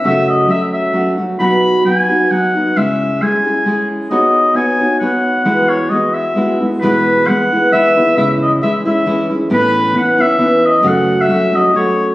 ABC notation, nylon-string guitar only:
X:1
M:3/4
L:1/8
Q:"Swing" 1/4=133
K:E
V:1 name="Nylon-string guitar"
[F,,C,F,A,CF]2 [F,A,CF]2 [F,A,CF] [F,A,CF] | [B,,F,B,DF]2 [F,B,DF] [B,DF] [F,B,DF] [B,DF] | [C,G,CEG]2 [G,CEG] [CEG] [G,CEG]2 | [B,DFc]2 [B,DFc] [DFc] [B,DFc]2 |
[E,,E,G,B,EF]2 [G,B,EF]2 [G,B,EF] [G,B,EF] | [E,,B,,E,G,B,E]2 [E,G,B,E] [E,G,B,E] [E,G,B,E] [E,G,B,E] | [C,E,G,CE]2 [E,G,CE] [G,CE] [E,G,CE] [G,CE] | [A,,E,B,CE]2 [E,B,CE] [B,CE] [E,B,CE]2 |
[F,,C,F,A,CF]2 [F,A,CF] [F,A,CF] [F,A,CF]2 |]